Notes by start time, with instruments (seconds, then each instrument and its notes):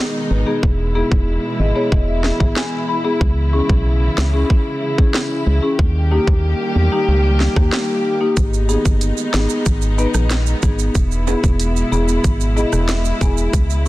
Already playing: string section B2 D#3 G#3 D#4
0.31 fm bass G#1, marimba D#4 B4
0.47 marimba B3 D#4 G#4
0.63 fm bass E1, string section B2 E3 E4, kick
0.95 marimba B3 E4 G#4
1.12 fm bass E1, kick
1.60 fm bass G#1, marimba E4 G#4 D#5
1.76 marimba B3 E4 G#4 C#5
1.92 fm bass E1, kick
2.08 marimba E5
2.24 marimba E4 G#4, snare
2.40 fm bass G#1, marimba B3 E4 G#4 E5, kick
2.56 marimba G#5, snare
2.88 marimba E4 G#4 B5
3.05 marimba B3 E4 G#4
3.21 fm bass C#2, string section C#3 E3, kick
3.53 marimba C#4 E4 G#4
3.69 fm bass B1, kick
4.18 fm bass C#2, snare
4.34 marimba C#4 E4 G#4
4.50 kick
4.82 marimba E4 G#4
4.98 marimba C#4 E4 G#4, kick
5.14 snare
5.46 fm bass C#2, marimba E4 G#4
5.63 marimba C#4 E4 G#4
5.79 fm bass D#2, string section D#3 G3 A#3 G4, kick
6.11 marimba A#3 D#4 G4
6.27 fm bass D#2, kick
6.76 fm bass E2, marimba D#4 G4
6.92 marimba A#3 D#4 G4
7.08 fm bass C#2
7.40 marimba D#4 G4, snare
7.56 fm bass D#2, marimba A#3 D#4 G4, kick, cross-stick
7.73 snare
8.05 marimba D#4 G4
8.21 marimba A#3 D#4 G4
8.37 fm bass G#1, string section D#3 G#3 B3 D#4, kick, closed hi-hat, maracas
8.54 maracas
8.69 marimba B3 D#4 G#4, maracas
8.85 fm bass G1, kick, maracas
9.01 closed hi-hat, maracas
9.17 maracas
9.33 fm bass G#1, marimba B3 D#4 G#4, snare, maracas
9.50 maracas
9.66 fm bass G#1, kick, closed hi-hat, maracas
9.82 maracas
9.98 marimba B3 D#4 B4, maracas
10.14 fm bass A#1, cross-stick, maracas
10.30 snare, closed hi-hat, maracas
10.46 maracas
10.62 fm bass G#1, marimba B3 D#4 G#4, kick, maracas
10.79 maracas
10.95 fm bass E1, string section B2 G#3 E4, kick, closed hi-hat, maracas
11.12 maracas
11.27 marimba B3 E4 G#4, high timbale, maracas
11.44 fm bass E1, kick, maracas
11.60 closed hi-hat, maracas
11.76 maracas
11.92 fm bass E1, marimba B3 E4 G#4, maracas
12.08 maracas
12.24 fm bass G#1, kick, closed hi-hat, maracas
12.41 maracas
12.57 marimba B3 E4 G#4 D#5, maracas
12.73 fm bass E1, cross-stick, maracas
12.89 marimba E5, snare, closed hi-hat, maracas
13.05 maracas
13.21 fm bass E1, marimba B3 E4 G#4 G#5, kick, maracas
13.37 maracas
13.53 fm bass C#2, string section C#3, kick, closed hi-hat, maracas
13.70 maracas